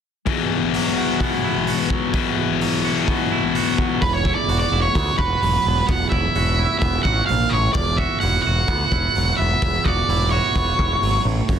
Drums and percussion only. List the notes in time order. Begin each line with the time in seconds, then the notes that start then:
0.26 kick, open hi-hat
0.74 open hi-hat
1.20 kick, open hi-hat
1.67 open hi-hat
1.90 kick
2.14 kick, open hi-hat
2.61 open hi-hat
3.08 kick, open hi-hat
3.55 open hi-hat
3.78 kick
4.02 kick, open hi-hat
4.25 kick
4.49 open hi-hat
4.95 kick, open hi-hat
5.19 kick
5.43 open hi-hat
5.89 kick, open hi-hat
6.12 kick
6.35 open hi-hat
6.82 kick, open hi-hat
7.05 kick
7.29 open hi-hat
7.74 kick, open hi-hat
7.98 kick
8.21 open hi-hat
8.68 kick, open hi-hat
8.92 kick
9.15 open hi-hat
9.62 kick, open hi-hat
9.86 kick
10.09 open hi-hat
10.56 kick, open hi-hat
10.79 kick
11.03 open hi-hat
11.49 kick, open hi-hat